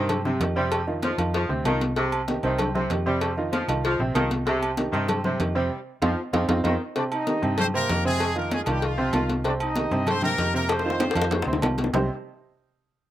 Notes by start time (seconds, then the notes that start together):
Already playing: G2 C3 D#3 C4 C5
0.09 cowbell, high conga, low conga, low agogo
0.25 C3 C4 C5, high conga, low conga
0.40 F2 D#3 D#4 G4, cowbell, low timbale, low agogo
0.56 C3 G3 C4 C5, high conga
0.72 cowbell, high conga, low agogo
0.87 D#3 D#4 F4, high conga
1.02 F3, cowbell, high conga, low timbale, low agogo
1.18 F2 D#3 D#4 F4, cowbell, high conga, low agogo
1.34 F3, cowbell, high conga
1.49 D2 C3 C4 C5, high conga
1.65 C2 D#3 D#4 F4, cowbell, high conga, low timbale, low agogo
1.81 cowbell, high conga
1.96 C3 C4 C5, cowbell, high conga, low agogo
2.12 high conga, low agogo
2.28 D#3 D#4 G4, cowbell, high conga, low timbale
2.43 C2 C3 D#3 C4 C5, high conga, low agogo
2.58 cowbell, high conga, low conga, low agogo
2.75 C3 C4 C5, high conga, low conga
2.90 F2 D#3 D#4 G4, cowbell, high conga, low timbale, low agogo
3.06 C3 G3 C4 C5, high conga
3.21 cowbell, high conga, low agogo
3.37 D#3 D#4 F4, high conga
3.53 F3, cowbell, high conga, low timbale, low agogo
3.68 C2 D#3 D#4 F4, cowbell, high conga, low agogo
3.84 F3, cowbell, high conga
3.99 A#1 C3 C4 C5, high conga
4.15 C2 D#3 D#4 F4, cowbell, high conga, low timbale, low agogo
4.31 cowbell, high conga
4.46 C3 C4 C5, cowbell, high conga, low agogo
4.62 high conga, low agogo
4.77 D#3 D#4 G4, cowbell, high conga, low timbale
4.93 G2 C3 D#3 C4 C5, high conga, low agogo
5.08 cowbell, high conga, low conga, low agogo
5.24 C3 C4 C5, high conga, low conga
5.39 F2 D#3 D#4 G4, cowbell, high conga, low timbale, low agogo
5.55 C3 G3 C4 C5, high conga
6.02 F2 F3 C4 D#4 F4, cowbell, high conga, high timbale
6.33 F2 F3 C4 D#4 F4, cowbell, high conga, high timbale
6.48 F2 C4 D#4 F4, cowbell, high conga, high timbale
6.64 F2 D#3 C4 D#4 F4, cowbell, high conga, high timbale
6.96 C3 C4 D4 C5 D5, cowbell, high conga, low agogo
7.11 D#4 D#5, high conga, low agogo
7.27 D#3 D#4 G4, cowbell, high conga, low timbale
7.42 G2 C3 C4 C5, high conga, low agogo
7.58 C4 C5, cowbell, high conga, low conga, low agogo
7.74 C3 A#3 C4 A#4 C5, high conga
7.89 F2 D#3 D#4 G4, cowbell, high conga, low timbale, low agogo
8.05 C3 G#3 C4 G#4 C5, high conga
8.20 cowbell, high conga, low agogo
8.35 D#3 A#3 D#4 F4 A#4, high conga
8.51 G#3 G#4, cowbell, high conga, low timbale, low agogo
8.64 C2 D#3 D#4 F4 G#4, cowbell, high conga, low agogo
8.68 G3 G4
8.82 F3 F4, cowbell, high conga
8.98 C3 C4 C5, high conga
9.13 C2 D#3 D#4 F4, cowbell, high conga, low timbale, low agogo
9.29 cowbell, high conga
9.44 C3 C4 D4 C5 D5, cowbell, high conga, low agogo
9.60 D#4 D#5, high conga, low agogo
9.76 D#3 D#4 G4, cowbell, high conga, low timbale
9.91 G2 C3 C4 C5, high conga, low agogo
10.07 C4 C5, cowbell, high conga, low conga, low agogo
10.22 C3 A#3 C4 A#4 C5, high conga, low conga
10.38 F2 D#3 D#4 G4, cowbell, high conga, low timbale, low agogo
10.53 C3 A#3 C4 A#4 C5, high conga
10.69 C4 C5, cowbell, high bongo, high conga, low agogo
10.79 high bongo
10.84 D#3 D#4 F4, high conga
10.90 high bongo
11.00 cowbell, low bongo, high conga, high timbale, low agogo
11.11 high bongo
11.15 F2 D#3 D#4 F4, cowbell, high conga, high timbale, low agogo
11.22 high bongo
11.31 cowbell, low bongo, high conga, low timbale
11.42 D2, low bongo
11.47 C3 C4 C5, high conga
11.53 low bongo
11.62 C2 D#3 D#4 F4, cowbell, low bongo, high conga, low timbale, low agogo
11.78 cowbell, high conga, low timbale
11.84 low bongo
11.93 C2 C3 G3 C4 D#4 G4 C5, low bongo, low conga, low timbale